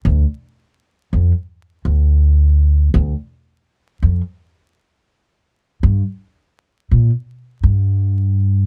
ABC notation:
X:1
M:4/4
L:1/8
Q:"Swing 16ths" 1/4=83
K:Dm
V:1 name="Upright bass" clef=bass
D,, z2 F,, z D,,3 | D,, z2 F,, z4 | G,, z2 B,, z G,,3 |]